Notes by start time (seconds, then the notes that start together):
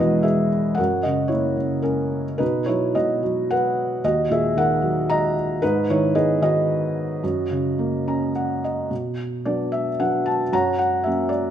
Already playing: E2 B2 E3 B3 C#4 E4 G#4 A#4 B4 D#5
0.00 G#3 F#4
0.23 G#4 E5
0.75 A#4 F#5
0.79 F#2
1.03 C#3 F#4 D#5
1.28 E4 C#5
1.32 A#3
1.57 C#3
1.82 C#4 A#4
2.38 B2 D#4 B4
2.66 F#3 E4 C#5
2.95 B2 F#4 D#5
3.23 F#3
3.51 B4 F#5
4.04 D#2 F#4 D#5
4.30 A#2 G#4 E5
4.56 D#3 A#4 F#5
4.82 F#3
5.10 D#5 A#5
5.62 G#2 D#4 B4
5.90 D#3 E4 C#5
6.15 B3 G#4 D#5
6.42 D#3 F#4 D#5
7.24 F#2
7.51 C#3
7.79 A#3
8.07 C#4 A#5
8.35 F#5
8.64 D#5
8.91 B2
9.45 F#3 B3 D4 D5
9.72 E5
9.99 F#3 B3 D4 F#5
10.26 A5
10.52 F#2 C#5 F#5 A#5
10.79 F#5
11.04 F#3 A#3 C#4 E5
11.29 D5